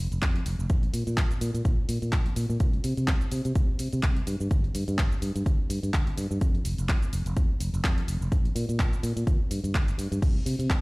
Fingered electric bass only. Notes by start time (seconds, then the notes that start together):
0.12 F1
0.22 F2
0.46 F1
0.59 F1
0.70 A#1
0.93 A#2
1.07 A#2
1.17 A#1
1.41 A#2
1.54 A#2
1.65 A#1
1.78 muted fingered electric bass stroke
1.89 A#2
2.02 A#2
2.13 A#1
2.36 A#2
2.50 A#2
2.60 C2
2.84 C3
2.97 C3
3.08 C2
3.32 C3
3.45 C3
3.56 C2
3.80 C3
3.93 C3
4.03 C2
4.27 G2
4.40 G2
4.51 G1
4.75 G2
4.88 G2
4.99 G1
5.22 G2
5.36 G2
5.46 G1
5.59 muted fingered electric bass stroke
5.70 G2
5.83 G2
5.94 G1
6.18 G2
6.31 G2
6.65 F1
6.79 F1
6.89 F2
7.13 F1
7.26 F1
7.37 F2
7.60 F1
7.74 F1
7.84 F2
8.08 F1
8.21 F1
8.32 A#1
8.55 A#2
8.69 A#2
8.79 A#1
9.03 A#2
9.16 A#2
9.27 G1
9.40 muted fingered electric bass stroke
9.51 G2
9.64 G2
9.75 G1
9.98 G2
10.12 G2
10.22 C2
10.46 C3
10.59 C3
10.70 C2